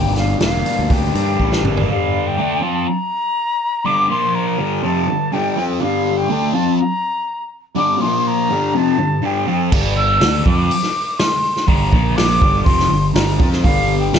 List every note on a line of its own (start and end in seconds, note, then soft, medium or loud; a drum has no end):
0.00 0.34 G1 loud
0.00 1.14 G2 medium
0.00 0.65 G3 medium
0.00 0.40 A#3 medium
0.00 0.41 D4 medium
0.00 0.16 G4 medium
0.00 0.14 G5 medium
0.16 1.39 D3 medium
0.16 0.40 F5 medium
0.16 snare soft
0.16 open hi-hat medium
0.40 0.62 E1 medium
0.40 1.63 A#3 medium
0.40 0.93 F5 medium
0.40 snare loud
0.40 open hi-hat medium
0.66 1.14 D4 medium
0.66 open hi-hat medium
0.79 1.10 D2 medium
0.90 1.88 G4 medium
0.90 1.64 G5 medium
0.90 kick loud
0.90 open hi-hat medium
1.15 1.36 G2 loud
1.15 1.88 D4 medium
1.15 open hi-hat medium
1.39 1.61 A1 medium
1.39 1.88 G3 medium
1.39 kick medium
1.52 snare medium
1.64 1.86 G1 medium
1.64 1.89 A#3 medium
1.64 mid tom medium
1.77 floor tom medium
1.88 2.36 G2 loud
1.88 2.36 D3 loud
1.88 2.37 G3 loud
1.88 2.28 F5 medium
2.27 2.64 G5 medium
2.37 2.61 D3 loud
2.37 2.61 A3 loud
2.37 2.62 D4 loud
2.61 2.85 F3 medium
2.61 2.86 C4 medium
2.61 2.86 F4 medium
2.61 2.89 A5 medium
2.87 3.87 A#5 loud
3.85 4.08 G2 loud
3.85 4.08 D3 loud
3.85 4.09 G3 loud
3.85 4.09 D6 loud
4.09 4.57 A#2 medium
4.09 4.57 F3 medium
4.09 4.58 A#3 medium
4.09 4.36 C6 loud
4.35 4.83 A#5 medium
4.58 4.82 G2 medium
4.58 4.82 D3 medium
4.58 4.82 G3 medium
4.83 5.06 F2 loud
4.83 5.06 C3 loud
4.83 5.07 F3 loud
4.83 5.34 A5 loud
5.08 5.27 G2 medium
5.08 5.27 D3 medium
5.32 5.55 G2 loud
5.32 5.56 D3 loud
5.32 5.56 G3 loud
5.32 5.69 G5 medium
5.56 5.80 F3 medium
5.56 5.80 C4 medium
5.56 5.80 F4 medium
5.80 6.29 G2 loud
5.80 6.28 D3 loud
5.80 6.29 G3 loud
5.80 6.18 F5 medium
6.17 6.56 G5 medium
6.29 6.53 D3 loud
6.29 6.53 A3 loud
6.29 6.54 D4 loud
6.54 6.78 F3 medium
6.54 6.78 C4 medium
6.54 6.78 F4 loud
6.54 6.77 A5 medium
6.78 7.45 A#5 medium
7.75 8.00 G2 loud
7.75 8.00 D3 loud
7.75 8.01 G3 loud
7.75 8.02 D6 loud
8.00 8.49 A#2 medium
8.00 8.49 F3 loud
8.00 8.49 A#3 medium
8.00 8.29 C6 loud
8.27 8.79 A#5 loud
8.49 8.73 G2 medium
8.49 8.74 D3 medium
8.49 8.74 G3 medium
8.74 8.98 F2 medium
8.74 8.98 C3 loud
8.74 8.98 F3 medium
8.74 9.27 A5 loud
8.98 9.18 G2 medium
8.98 9.18 D3 medium
9.22 9.47 G2 medium
9.22 9.46 D3 loud
9.22 9.47 G3 loud
9.22 9.61 G5 medium
9.47 9.71 F3 medium
9.47 9.72 C4 medium
9.47 9.72 F4 medium
9.71 10.18 G1 loud
9.71 10.20 G2 loud
9.71 10.20 D3 loud
9.71 10.21 G3 medium
9.71 kick loud
9.71 crash loud
9.97 10.42 E6 loud
10.21 10.44 D2 medium
10.21 10.45 D3 medium
10.21 10.45 A3 loud
10.21 10.46 D4 loud
10.21 snare loud
10.21 open hi-hat medium
10.46 10.69 F2 loud
10.46 10.70 F3 medium
10.46 10.70 C4 medium
10.46 10.70 F4 loud
10.46 11.20 D6 loud
10.46 kick loud
10.71 open hi-hat medium
10.83 snare soft
11.18 11.69 C6 loud
11.18 snare loud
11.18 open hi-hat medium
11.56 snare soft
11.67 11.91 G1 loud
11.67 11.92 G2 loud
11.67 11.92 D3 loud
11.67 11.92 G3 loud
11.67 12.17 A#5 medium
11.67 kick loud
11.67 open hi-hat medium
11.92 12.38 A#1 medium
11.92 12.41 A#2 medium
11.92 12.41 F3 medium
11.92 12.41 A#3 medium
11.92 kick loud
12.16 12.63 D6 loud
12.16 snare loud
12.16 open hi-hat medium
12.41 12.65 G1 loud
12.41 12.65 G2 medium
12.41 12.66 D3 medium
12.41 12.66 G3 loud
12.41 kick loud
12.63 12.89 F1 loud
12.63 12.90 F2 medium
12.63 12.90 C3 loud
12.63 12.90 F3 loud
12.63 13.10 C6 loud
12.63 kick loud
12.63 open hi-hat medium
12.80 snare soft
12.91 13.14 G1 medium
12.91 13.10 G2 medium
12.91 13.11 D3 medium
13.14 13.38 G1 loud
13.14 13.39 G2 loud
13.14 13.39 D3 loud
13.14 13.39 G3 loud
13.14 13.49 A#5 medium
13.14 snare loud
13.14 open hi-hat medium
13.40 13.63 F2 loud
13.40 13.63 F3 medium
13.40 13.64 C4 medium
13.40 13.64 F4 loud
13.40 kick loud
13.52 snare soft
13.62 14.10 G1 loud
13.62 14.13 G2 loud
13.62 14.12 D3 medium
13.62 14.13 G3 loud
13.62 13.97 F5 loud
13.62 kick loud
13.62 open hi-hat medium
13.99 14.19 G5 medium
14.13 14.19 D2 medium
14.13 14.19 D3 medium
14.13 14.19 A3 loud
14.13 14.19 D4 loud
14.13 snare loud
14.13 open hi-hat medium